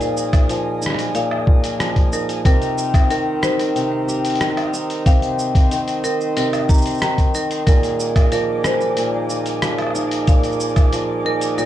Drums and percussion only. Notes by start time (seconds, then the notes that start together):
0.01 open hi-hat, cabasa
0.17 cabasa
0.33 kick, open hi-hat, cabasa, low woodblock
0.49 open hi-hat, cabasa
0.82 cabasa
0.86 cross-stick
0.90 cross-stick
0.95 cross-stick
0.99 open hi-hat, cabasa
1.15 open hi-hat, cabasa
1.31 low woodblock
1.47 kick
1.64 open hi-hat, cabasa
1.80 cross-stick, open hi-hat, cabasa
1.96 kick, open hi-hat
2.13 cabasa
2.29 open hi-hat, cabasa
2.45 kick, open hi-hat, cabasa
2.62 open hi-hat, cabasa
2.78 cabasa
2.94 kick, open hi-hat, cabasa, low woodblock
3.10 open hi-hat, cabasa
3.43 cross-stick, cabasa
3.59 open hi-hat, cabasa
3.76 open hi-hat, cabasa
4.09 cabasa
4.25 open hi-hat, cabasa
4.30 open hi-hat
4.35 open hi-hat
4.41 cross-stick, open hi-hat, cabasa
4.57 open hi-hat, low woodblock
4.74 cabasa
4.90 open hi-hat, cabasa
5.06 kick, open hi-hat, cabasa
5.22 open hi-hat, cabasa
5.39 cabasa
5.55 kick, open hi-hat, cabasa
5.71 open hi-hat, cabasa
5.88 open hi-hat, cabasa
6.04 cabasa
6.21 cabasa
6.37 open hi-hat, cabasa
6.53 open hi-hat, cabasa, low woodblock
6.69 kick, cabasa
6.74 cabasa
6.78 cabasa
6.81 cabasa
6.86 open hi-hat, cabasa
6.90 cabasa
6.94 cabasa
6.98 cabasa
7.02 cross-stick, open hi-hat, cabasa
7.18 kick, open hi-hat, cabasa
7.35 cabasa
7.51 open hi-hat, cabasa
7.67 kick, open hi-hat, cabasa
7.83 open hi-hat, cabasa
8.00 cabasa
8.16 kick, open hi-hat, cabasa, low woodblock
8.32 open hi-hat, cabasa
8.64 cross-stick, cabasa
8.81 cabasa
8.97 open hi-hat, cabasa
9.30 cabasa
9.46 open hi-hat, cabasa
9.62 cross-stick, open hi-hat, cabasa
9.78 open hi-hat, low woodblock
9.82 low woodblock
9.87 low woodblock
9.90 low woodblock
9.95 cabasa, low woodblock
9.99 low woodblock
10.03 low woodblock
10.07 low woodblock
10.11 open hi-hat, cabasa
10.27 kick, open hi-hat, cabasa
10.43 open hi-hat, cabasa
10.52 cabasa
10.60 cabasa
10.69 cabasa
10.76 kick, open hi-hat, cabasa, low woodblock
10.93 open hi-hat, cabasa
11.41 open hi-hat, cabasa
11.58 cabasa